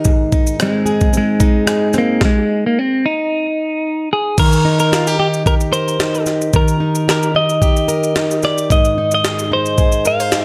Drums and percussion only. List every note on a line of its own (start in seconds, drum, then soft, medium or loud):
0.05 kick loud
0.05 shaker medium
0.32 kick medium
0.32 shaker soft
0.47 shaker medium
0.60 cross-stick loud
0.60 shaker medium
0.87 shaker medium
1.01 kick medium
1.01 shaker soft
1.14 shaker medium
1.40 kick loud
1.40 shaker medium
1.67 cross-stick loud
1.67 shaker medium
1.93 cross-stick soft
1.93 shaker soft
2.21 kick medium
2.21 snare medium
4.38 kick loud
4.38 crash medium
4.38 shaker medium
4.53 shaker medium
4.80 shaker medium
4.93 snare medium
4.93 shaker medium
5.07 shaker medium
5.34 shaker soft
5.46 kick loud
5.46 shaker medium
5.61 shaker soft
5.73 shaker medium
5.88 shaker soft
6.00 snare loud
6.00 shaker medium
6.15 shaker soft
6.26 snare soft
6.26 shaker medium
6.42 shaker medium
6.54 kick loud
6.54 shaker medium
6.68 shaker soft
6.95 shaker medium
7.09 snare loud
7.09 shaker medium
7.23 shaker medium
7.50 shaker soft
7.62 kick medium
7.62 shaker medium
7.77 shaker soft
7.89 shaker medium
8.04 shaker soft
8.16 snare loud
8.16 shaker medium
8.31 shaker medium
8.43 snare soft
8.43 shaker medium
8.58 shaker medium
8.70 kick loud
8.70 shaker medium
8.85 shaker medium
9.12 shaker medium
9.25 snare loud
9.25 shaker medium
9.39 shaker medium
9.66 shaker soft
9.78 kick medium
9.78 shaker medium
9.92 shaker soft
10.05 shaker medium
10.20 shaker soft
10.32 snare loud
10.32 shaker medium